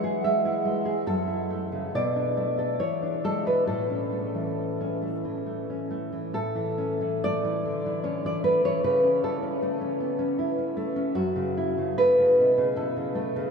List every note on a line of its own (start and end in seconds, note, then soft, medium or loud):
0.00 1.02 E3 medium
0.00 0.24 G#3 medium
0.00 0.44 E4 medium
0.00 0.84 G#4 medium
0.00 0.21 F#5 loud
0.24 0.64 G#3 soft
0.24 1.03 E5 medium
0.45 1.06 E4 medium
0.65 1.06 G#3 medium
0.85 1.06 G#4 medium
1.07 1.92 F#2 medium
1.07 1.91 A4 medium
1.28 1.95 E4 medium
1.50 1.95 A3 soft
1.72 1.95 C#3 soft
1.95 2.78 B2 medium
1.95 2.77 D5 medium
2.16 2.80 D4 soft
2.37 2.80 A3 soft
2.59 2.80 A4 medium
2.80 3.65 E3 medium
2.80 3.22 C#5 medium
3.03 3.45 D4 soft
3.24 3.68 G#3 soft
3.24 3.46 A4 medium
3.46 3.68 D4 soft
3.46 3.67 B4 medium
3.67 6.30 A2 medium
3.67 5.43 A4 medium
3.90 4.80 C#4 soft
4.12 5.01 A3 soft
4.35 5.24 E3 soft
4.81 5.69 C#4 soft
5.02 5.45 A3 soft
5.25 6.11 E3 soft
5.46 5.89 A3 soft
5.70 6.34 C#4 soft
5.90 6.34 A3 soft
6.13 6.34 E3 soft
6.34 8.78 A2 medium
6.34 7.18 A4 medium
6.55 7.00 E3 soft
6.78 8.02 C#4 soft
7.01 7.43 E3 soft
7.24 7.65 A3 medium
7.24 8.01 D5 loud
7.44 7.85 E3 soft
7.66 8.43 D3 soft
7.86 8.24 E3 soft
8.04 8.83 C#4 soft
8.04 8.23 C#5 medium
8.25 8.63 E3 soft
8.25 8.44 D5 medium
8.44 8.83 A3 soft
8.44 8.63 B4 medium
8.64 8.83 E3 soft
8.64 8.84 C#5 medium
8.84 11.12 C#3 medium
8.84 9.21 B4 medium
9.04 9.42 C#4 soft
9.24 10.00 E4 soft
9.24 10.38 A4 medium
9.43 9.80 C#4 soft
9.62 10.76 A3 medium
9.81 10.18 C#4 soft
10.00 11.16 B3 soft
10.19 10.57 C#4 soft
10.39 11.15 E4 soft
10.59 10.95 C#4 soft
10.77 11.15 A3 medium
10.96 11.15 C#4 medium
11.15 12.39 F#2 medium
11.15 11.95 F#4 medium
11.36 11.77 C#3 soft
11.57 12.76 E4 soft
11.78 12.17 C#3 soft
11.98 13.14 A3 medium
11.98 12.74 B4 loud
12.18 12.56 C#3 soft
12.39 13.51 B2 soft
12.58 12.95 C#3 medium
12.76 13.51 E4 soft
12.76 13.51 A4 medium
12.97 13.35 C#3 soft
13.15 13.51 A3 medium
13.36 13.51 C#3 medium